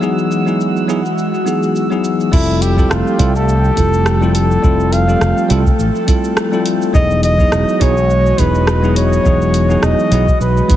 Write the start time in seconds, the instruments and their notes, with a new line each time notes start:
Already playing: analog synth pad E3 G#3 F#4 F#5, synth texture E6
0.01 tine electric piano F#3 B3 D#4 E4 G#4, cabasa
0.19 cabasa
0.31 cabasa
0.45 tine electric piano F#3 B3 D#4 E4 G#4, cabasa
0.61 cabasa
0.77 cabasa
0.87 tine electric piano F#3 B3 D#4 E4 G#4, cabasa
1.06 cabasa
1.18 cabasa
1.34 cabasa
1.45 tine electric piano F#3 B3 D#4 E4 G#4, cabasa
1.63 cabasa
1.76 cabasa
1.90 tine electric piano F#3 B3 D#4 E4 G#4, cabasa
2.04 cabasa
2.21 cabasa
2.32 fretless electric bass F1, analog synth pad F3 A3 G4 G5, tine electric piano G3 C4 E4 F4 A4, flugelhorn E4, kick, crash, cabasa
2.50 cabasa
2.62 flugelhorn G4, open hi-hat, cabasa
2.77 tine electric piano G3 C4 E4 F4 A4, kick, cabasa
2.90 fretless electric bass F1, flugelhorn F4, cross-stick, cabasa
3.07 cabasa
3.18 fretless electric bass C2, tine electric piano G3 C4 E4 F4 A4, kick, open hi-hat, cabasa
3.35 flugelhorn A4, cabasa
3.49 cabasa
3.65 cabasa
3.76 fretless electric bass F1, tine electric piano G3 C4 E4 F4 A4, kick, open hi-hat, cabasa
3.94 cabasa
4.06 cross-stick, cabasa
4.21 tine electric piano G3 C4 E4 F4 A4, cabasa
4.35 flugelhorn A4, open hi-hat, cabasa
4.51 cabasa
4.62 fretless electric bass F1, tine electric piano G3 C4 E4 F4 A4, analog synth pad A4, kick, cabasa
4.80 cabasa
4.93 flugelhorn F5, open hi-hat, cabasa
5.07 tine electric piano G3 C4 F4 G4 A4, cabasa
5.21 fretless electric bass F1, cross-stick, cabasa
5.38 cabasa
5.49 fretless electric bass C2, tine electric piano G3 C4 E4 F4 A4, open hi-hat, cabasa
5.66 kick, cabasa
5.79 fretless electric bass A1, cabasa
5.96 cabasa
6.07 tine electric piano G3 C4 E4 F4 A4, kick, open hi-hat, cabasa
6.24 cabasa
6.37 cross-stick, cabasa
6.51 tine electric piano G3 C4 E4 F4 A4, cabasa
6.66 open hi-hat, cabasa
6.82 cabasa
6.93 fretless electric bass E1, analog synth pad E3 G#3 F#4 D#5, tine electric piano F#3 B3 D#4 E4 G#4, flugelhorn D#5, kick, cabasa
7.11 cabasa
7.23 flugelhorn D#5, open hi-hat, cabasa
7.38 tine electric piano F#3 B3 D#4 E4 G#4, kick, cabasa
7.52 fretless electric bass E1, cross-stick, cabasa
7.69 cabasa
7.80 fretless electric bass B1, tine electric piano F#3 B3 D#4 E4 G#4, flugelhorn C#5, kick, open hi-hat, cabasa
7.97 cabasa
8.10 cabasa
8.26 cabasa
8.37 fretless electric bass E1, tine electric piano F#3 B3 D#4 E4 G#4, flugelhorn B4, kick, open hi-hat, cabasa
8.55 cabasa
8.67 cross-stick, cabasa
8.82 tine electric piano F#3 B3 D#4 E4 G#4, cabasa
8.96 flugelhorn C#5, open hi-hat, cabasa
9.13 cabasa
9.24 fretless electric bass E1, tine electric piano F#3 B3 D#4 E4 G#4, kick, cabasa
9.42 cabasa
9.54 open hi-hat, cabasa
9.69 tine electric piano F#3 B3 D#4 E4 G#4, cabasa
9.83 fretless electric bass E1, flugelhorn D#5, cross-stick, cabasa
9.99 cabasa
10.11 fretless electric bass B1, tine electric piano F#3 B3 D#4 E4 G#4, open hi-hat, cabasa
10.28 kick, cabasa
10.40 fretless electric bass B1, flugelhorn B4, cabasa
10.57 cabasa
10.68 fretless electric bass G#1, tine electric piano F#3 B3 D#4 E4 B4, kick, open hi-hat, cabasa